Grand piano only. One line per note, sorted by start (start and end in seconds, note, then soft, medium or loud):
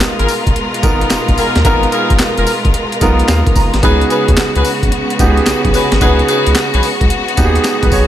0.00 0.44 B3 medium
0.00 0.45 D#4 medium
0.00 0.45 F4 medium
0.00 0.45 A#4 loud
0.83 1.57 B3 medium
0.83 1.57 D#4 medium
0.83 1.57 F4 medium
0.83 1.58 A#4 medium
1.64 2.63 B3 medium
1.64 2.63 D#4 medium
1.64 2.63 F4 medium
1.64 2.63 A#4 loud
3.01 3.75 B3 medium
3.01 3.75 D#4 medium
3.01 3.76 F4 medium
3.01 3.76 A#4 medium
3.29 3.54 F5 medium
3.56 3.81 A#5 medium
3.83 4.81 B3 medium
3.83 4.81 D#4 medium
3.83 4.81 F#4 medium
3.83 4.81 G#4 loud
5.19 5.93 B3 medium
5.19 5.94 D#4 medium
5.19 5.94 F#4 medium
5.19 5.28 G4 medium
5.27 5.97 G#4 medium
6.01 6.99 B3 medium
6.01 6.99 D#4 medium
6.01 6.99 F#4 medium
6.01 7.00 G#4 loud
7.37 8.07 B3 medium
7.37 7.65 D#4 medium
7.37 7.65 F#4 medium
7.37 7.46 G4 medium
7.45 7.68 G#4 loud
7.83 7.92 F#4 medium
7.83 7.92 B4 medium
7.92 8.07 G#4 medium
7.92 8.07 C#5 medium